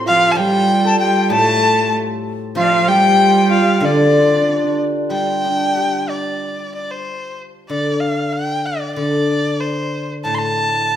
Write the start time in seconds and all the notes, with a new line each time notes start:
Already playing: A2 G4 A4 C5
0.06 F3 F4 F5
0.32 G3 A5
0.37 G3 G4 G5
0.85 A4 A5
1.00 G3 G5
1.30 A2 A3 A4 A5
2.55 F3 F4 F5
2.64 D5
2.70 F5
2.88 G3 G4 G5
3.37 G5
3.50 F4 F5
3.80 D3 D4 D5
3.85 D4 D5
3.96 D4
4.04 D4
4.12 D4
4.18 D4
4.27 D4
4.34 D4
4.41 D4
4.49 D4
4.56 D4
4.64 D4
5.10 G3 G5
5.45 D4
5.77 G4
6.10 D5
6.75 D5
6.91 C5
7.69 D3 D5
8.00 F5
8.33 G5
8.66 D5
8.96 D3 D5
9.60 C5
10.24 A2 A5
10.35 A5 C6